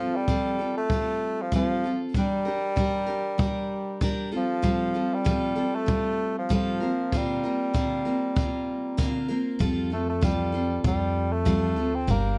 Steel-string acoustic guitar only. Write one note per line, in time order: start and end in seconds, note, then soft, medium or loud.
0.00 0.27 C4 soft
0.00 0.28 F4 soft
0.00 0.28 A4 soft
0.28 0.59 F3 medium
0.28 0.59 G3 medium
0.28 0.59 C4 medium
0.28 0.60 F4 medium
0.28 0.58 A4 medium
0.59 0.90 C4 soft
0.59 0.90 F4 soft
0.59 0.90 A4 soft
0.90 1.52 G3 medium
0.90 1.52 C4 soft
0.90 1.52 F4 medium
0.90 1.52 A4 medium
1.52 1.83 F3 medium
1.52 1.83 G3 medium
1.52 1.84 C4 medium
1.52 1.84 F4 medium
1.52 1.83 A4 medium
1.84 2.16 C4 soft
1.84 2.15 F4 soft
1.84 2.15 A4 soft
2.15 2.46 G3 medium
2.15 2.46 D4 medium
2.15 2.45 G4 medium
2.15 2.44 A#4 medium
2.45 2.76 D4 soft
2.45 2.76 G4 soft
2.45 2.76 A#4 soft
2.76 3.07 G3 medium
2.76 3.08 D4 medium
2.76 3.06 G4 medium
2.76 3.05 A#4 medium
3.06 3.37 D4 soft
3.06 3.38 G4 soft
3.06 3.38 A#4 medium
3.38 4.00 G3 medium
3.38 4.01 D4 medium
3.38 4.02 G4 medium
3.38 4.02 A#4 medium
4.01 4.32 G3 medium
4.01 4.33 D4 medium
4.01 4.32 G4 medium
4.01 4.31 A#4 medium
4.31 4.62 G3 soft
4.31 4.62 C4 soft
4.31 4.63 F4 soft
4.31 4.63 A4 soft
4.62 4.94 A2 medium
4.62 4.94 F3 medium
4.62 4.94 G3 medium
4.62 4.94 C4 medium
4.62 4.93 F4 medium
4.62 4.93 A4 medium
4.94 5.24 G3 soft
4.94 5.25 C4 soft
4.94 5.25 F4 soft
4.94 5.25 A4 soft
5.24 5.56 A2 medium
5.24 5.56 F3 medium
5.24 5.57 G3 medium
5.24 5.56 C4 medium
5.24 5.55 F4 medium
5.24 5.54 A4 medium
5.55 5.85 G3 soft
5.55 5.87 C4 soft
5.55 5.87 F4 soft
5.55 5.87 A4 soft
5.86 6.49 G3 medium
5.86 6.50 C4 medium
5.86 6.51 F4 medium
5.86 6.50 A4 medium
6.49 6.81 A2 medium
6.49 6.81 F3 medium
6.49 6.81 G3 medium
6.49 6.82 C4 medium
6.49 6.80 F4 medium
6.49 6.80 A4 medium
6.80 7.12 A#3 soft
6.80 7.13 C4 soft
6.80 7.12 F4 soft
6.80 7.12 A#4 soft
7.12 7.43 A#2 medium
7.12 7.44 D3 medium
7.12 7.44 A#3 medium
7.12 7.44 C4 medium
7.12 7.44 F4 medium
7.12 7.42 A#4 medium
7.43 7.74 A#3 soft
7.43 7.74 C4 soft
7.43 7.74 F4 soft
7.43 7.74 A#4 soft
7.74 8.05 A#2 medium
7.74 8.05 D3 medium
7.74 8.06 A#3 medium
7.74 8.06 C4 medium
7.74 8.05 F4 medium
7.74 8.04 A#4 medium
8.05 8.35 A#3 soft
8.05 8.35 C4 soft
8.05 8.37 F4 soft
8.05 8.36 A#4 medium
8.36 8.97 A#3 medium
8.36 8.98 C4 medium
8.36 8.99 F4 medium
8.36 8.98 A#4 medium
8.97 9.29 A#2 medium
8.97 9.29 D3 medium
8.97 9.29 A#3 medium
8.97 9.29 C4 medium
8.97 9.28 F4 medium
8.97 9.27 A#4 medium
9.28 9.59 A#3 soft
9.28 9.59 C4 soft
9.28 9.59 F4 soft
9.28 9.60 A#4 medium
9.59 9.91 F3 medium
9.59 9.91 G3 medium
9.59 9.91 C4 medium
9.59 9.90 F4 medium
9.59 9.89 A4 medium
9.90 10.21 C4 soft
9.90 10.22 F4 soft
9.90 10.22 A4 soft
10.21 10.53 F3 medium
10.21 10.53 G3 medium
10.21 10.54 C4 medium
10.21 10.53 F4 medium
10.21 10.51 A4 medium
10.52 10.84 C4 soft
10.52 10.85 F4 soft
10.52 10.84 A4 soft
10.84 11.45 G3 medium
10.84 11.45 C4 medium
10.84 11.45 F4 medium
10.84 11.46 A4 medium
11.45 11.77 F3 medium
11.45 11.77 G3 medium
11.45 11.77 C4 medium
11.45 11.76 F4 medium
11.45 11.75 A4 medium
11.76 12.08 C4 soft
11.76 12.08 F4 soft
11.76 12.08 A4 medium
12.07 12.38 G3 medium
12.07 12.38 D4 medium
12.07 12.38 G4 medium
12.07 12.37 A#4 medium